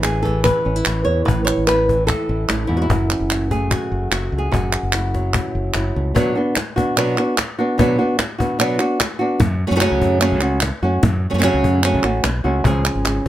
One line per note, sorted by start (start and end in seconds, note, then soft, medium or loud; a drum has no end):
0.00 0.48 A1 medium
0.00 1.24 A2 medium
0.00 0.24 E3 soft
0.00 0.65 C#4 soft
0.00 0.65 G#4 medium
0.00 0.22 B4 soft
0.00 clap medium
0.05 cajon slap medium
0.23 1.88 E3 medium
0.23 0.43 A4 medium
0.23 cajon bass medium
0.23 cajon slap soft
0.44 1.04 B4 medium
0.44 cajon bass medium
0.44 clap medium
0.65 0.81 A1 medium
0.65 0.76 C#4 soft
0.76 0.86 E4 soft
0.85 1.02 A1 medium
0.85 2.29 E4 soft
0.85 cajon slap medium
0.85 clap medium
1.05 1.22 E2 medium
1.05 1.25 C#5 medium
1.25 1.50 A1 medium
1.25 2.47 A2 medium
1.25 1.44 B4 medium
1.25 cajon bass medium
1.45 1.66 C#5 medium
1.45 clap medium
1.58 2.12 A1 medium
1.67 2.06 B4 medium
1.67 cajon slap medium
1.67 clap medium
1.89 3.50 E3 soft
1.89 cajon bass medium
2.07 2.76 A4 medium
2.07 cajon bass medium
2.07 cajon slap soft
2.07 clap medium
2.29 2.45 A1 medium
2.29 2.67 E4 soft
2.48 2.65 A1 medium
2.48 2.68 A2 medium
2.48 cajon slap medium
2.48 clap medium
2.67 2.85 E2 medium
2.67 2.90 G#2 medium
2.67 2.81 E4 medium
2.77 2.90 F#4 medium
2.82 3.50 E4 medium
2.89 3.13 F#1 medium
2.89 4.51 F#2 medium
2.89 cajon bass medium
3.10 4.50 C#4 soft
3.10 clap medium
3.20 3.74 F#1 medium
3.30 cajon slap medium
3.30 clap medium
3.51 4.50 A3 medium
3.51 4.12 G#4 medium
3.51 cajon bass medium
3.71 4.11 F#4 medium
3.71 cajon bass medium
3.71 clap medium
3.92 4.07 F#1 medium
4.12 4.27 F#1 medium
4.12 4.50 F#4 medium
4.12 cajon slap medium
4.12 clap medium
4.32 4.48 C#2 medium
4.38 4.93 G#4 medium
4.52 4.76 F#1 medium
4.52 6.15 F#2 medium
4.52 6.15 F#4 medium
4.52 cajon bass medium
4.73 clap medium
4.83 5.37 F#1 medium
4.93 5.33 E4 soft
4.93 cajon slap medium
4.93 clap medium
5.14 6.13 F#3 medium
5.14 cajon bass medium
5.14 cajon slap soft
5.34 5.75 E4 soft
5.34 cajon bass medium
5.34 clap medium
5.55 5.70 F#1 medium
5.74 5.90 F#1 medium
5.74 6.14 E4 soft
5.74 cajon slap medium
5.74 clap medium
5.96 6.11 C#2 medium
5.96 6.15 A3 soft
6.15 6.35 B2 medium
6.15 6.35 F#3 medium
6.15 6.35 B3 medium
6.15 6.35 D4 medium
6.15 6.34 F#4 medium
6.15 cajon bass medium
6.35 6.56 B3 soft
6.35 6.56 D4 soft
6.35 6.55 F#4 soft
6.56 muted nylon-string guitar stroke medium
6.56 cajon slap medium
6.56 clap medium
6.76 6.97 B3 soft
6.76 6.96 D4 soft
6.76 6.96 F#4 medium
6.76 cajon bass medium
6.97 7.16 B2 medium
6.97 7.16 F#3 medium
6.97 7.17 B3 medium
6.97 7.17 D4 medium
6.97 7.16 F#4 medium
6.97 clap medium
7.18 7.37 B3 soft
7.18 7.37 D4 soft
7.18 7.37 F#4 medium
7.18 clap medium
7.37 muted nylon-string guitar stroke medium
7.37 cajon slap medium
7.37 clap medium
7.59 7.78 B3 soft
7.59 7.78 D4 medium
7.59 7.78 F#4 medium
7.78 7.97 B2 medium
7.78 7.98 F#3 medium
7.78 7.98 B3 medium
7.78 7.98 D4 medium
7.78 7.97 F#4 medium
7.78 cajon bass medium
7.99 8.18 B3 soft
7.99 8.18 D4 soft
7.99 8.18 F#4 medium
7.99 cajon slap soft
8.18 muted nylon-string guitar stroke medium
8.18 cajon slap medium
8.18 clap medium
8.38 8.58 B3 soft
8.38 8.59 D4 soft
8.38 8.58 F#4 medium
8.38 cajon bass medium
8.59 8.79 B2 medium
8.59 8.79 F#3 medium
8.59 8.79 B3 medium
8.59 8.79 D4 medium
8.59 8.78 F#4 medium
8.59 clap medium
8.79 8.99 B3 soft
8.79 9.00 D4 soft
8.79 8.99 F#4 medium
8.79 clap medium
9.00 muted nylon-string guitar stroke medium
9.00 cajon slap loud
9.00 clap medium
9.19 9.40 B3 soft
9.19 9.40 D4 medium
9.19 9.39 F#4 medium
9.40 9.63 F#2 loud
9.40 muted nylon-string guitar stroke medium
9.40 cajon bass loud
9.67 9.86 F#2 medium
9.67 9.70 F#3 medium
9.67 9.71 A3 medium
9.67 9.71 C#4 medium
9.67 9.71 F#4 medium
9.71 9.74 F#3 medium
9.71 9.75 A3 medium
9.71 9.75 C#4 medium
9.71 9.76 F#4 medium
9.76 9.79 F#3 medium
9.76 9.79 A3 medium
9.76 9.80 C#4 medium
9.76 9.80 F#4 medium
9.80 10.19 C#3 medium
9.80 10.20 F#3 medium
9.80 10.21 A3 medium
9.80 10.20 C#4 medium
9.80 10.21 F#4 medium
9.80 cajon slap medium
9.80 clap medium
9.92 9.99 C#2 medium
10.02 10.33 F#2 medium
10.02 cajon bass medium
10.20 10.41 C#3 medium
10.20 10.41 F#3 medium
10.20 10.41 A3 medium
10.20 10.41 C#4 medium
10.20 10.40 F#4 medium
10.20 clap medium
10.32 10.70 C#2 medium
10.41 10.61 A3 soft
10.41 10.61 C#4 soft
10.41 10.61 F#4 medium
10.41 clap medium
10.61 muted nylon-string guitar stroke medium
10.61 cajon slap medium
10.61 clap medium
10.83 10.98 F#2 medium
10.83 11.03 A3 soft
10.83 11.03 C#4 medium
10.83 11.02 F#4 medium
11.03 11.26 F#2 loud
11.03 muted nylon-string guitar stroke medium
11.03 cajon bass medium
11.30 11.48 F#2 medium
11.30 11.33 F#3 soft
11.30 11.33 A3 medium
11.30 11.34 C#4 medium
11.30 11.34 F#4 medium
11.34 11.37 F#3 medium
11.34 11.38 A3 medium
11.34 11.38 C#4 medium
11.34 11.38 F#4 medium
11.38 11.42 F#3 medium
11.38 11.43 A3 medium
11.38 11.43 C#4 medium
11.38 11.43 F#4 medium
11.38 clap medium
11.43 11.82 C#3 medium
11.43 11.83 F#3 medium
11.43 11.83 A3 medium
11.43 11.83 C#4 medium
11.43 11.84 F#4 medium
11.43 cajon slap medium
11.54 11.62 C#2 medium
11.64 11.95 F#2 medium
11.64 cajon bass medium
11.83 12.03 C#3 medium
11.83 12.03 F#3 medium
11.83 12.04 A3 medium
11.83 12.04 C#4 medium
11.83 12.03 F#4 medium
11.83 clap medium
11.94 12.02 C#2 medium
12.03 12.22 A1 medium
12.03 12.24 A3 soft
12.03 12.24 C#4 medium
12.03 12.24 F#4 soft
12.03 clap medium
12.24 12.43 B1 medium
12.24 muted nylon-string guitar stroke medium
12.24 cajon slap medium
12.24 clap medium
12.44 12.63 C#2 medium
12.44 12.65 A3 soft
12.44 12.65 C#4 soft
12.44 12.64 F#4 medium
12.64 12.88 C#2 medium
12.64 13.26 C#3 medium
12.64 13.25 F3 soft
12.64 12.86 C#4 soft
12.64 13.05 G#4 medium
12.64 cajon bass medium
12.85 13.28 C#4 soft
12.85 clap medium
12.95 13.19 G#1 medium
13.05 13.27 G#4 soft
13.05 cajon slap medium
13.05 clap medium